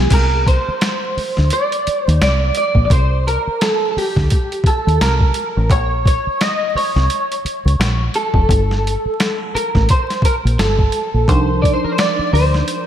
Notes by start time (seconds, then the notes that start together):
Already playing: G3 G#3 B3 F4 G#4
0.10 C2 A#4, kick, closed hi-hat, crash
0.46 C5, kick, closed hi-hat
0.68 muted fingered electric bass stroke
0.81 snare, closed hi-hat
1.17 muted fingered electric bass stroke, open hi-hat
1.37 D2, snare
1.50 D5, closed hi-hat
1.72 closed hi-hat
1.87 muted fingered electric bass stroke, closed hi-hat
2.06 D#2 C5, closed hi-hat
2.22 C2 D5, snare, closed hi-hat
2.55 D5, closed hi-hat
2.75 A#1, kick
2.85 D5
2.90 C2 C5, kick, closed hi-hat
3.27 A#4, closed hi-hat
3.47 muted fingered electric bass stroke
3.61 A4, snare, closed hi-hat
3.91 A4
3.97 G4, muted fingered electric bass stroke, open hi-hat
4.16 D2, kick, snare
4.30 kick, closed hi-hat
4.52 closed hi-hat
4.64 A4, muted fingered electric bass stroke, kick, closed hi-hat
4.87 D#2, closed hi-hat
5.01 C2 A#4, snare, closed hi-hat
5.20 kick
5.34 closed hi-hat
5.57 A1
5.70 A#1 C#5, kick, closed hi-hat
6.05 C#5, kick, closed hi-hat
6.27 muted fingered electric bass stroke
6.41 D#5, snare, closed hi-hat
6.75 C#5, muted fingered electric bass stroke, open hi-hat
6.96 C2, snare
7.10 closed hi-hat
7.32 closed hi-hat
7.45 muted fingered electric bass stroke, closed hi-hat
7.65 C#2, closed hi-hat
7.80 A#1, snare, closed hi-hat
8.14 A4, closed hi-hat
8.34 F1, kick
8.49 G1, kick, closed hi-hat
8.71 snare
8.87 closed hi-hat
9.05 muted fingered electric bass stroke
9.20 snare, closed hi-hat
9.55 A#4, muted fingered electric bass stroke, closed hi-hat
9.75 A1, kick, snare
9.89 C5, kick, closed hi-hat
10.10 snare, closed hi-hat
10.22 A#4, muted fingered electric bass stroke, kick, closed hi-hat
10.45 A#1, closed hi-hat
10.59 G1 A4, snare, closed hi-hat
10.79 kick
10.92 closed hi-hat
11.14 A#1
11.28 C2 F3 D4 D#4 A#4 C5, kick, closed hi-hat
11.62 D5, kick, closed hi-hat
11.73 C5
11.84 A#4, muted fingered electric bass stroke
11.92 C5
11.98 D5, snare, closed hi-hat
12.19 muted fingered electric bass stroke
12.33 D2 C5, open hi-hat
12.54 snare
12.68 closed hi-hat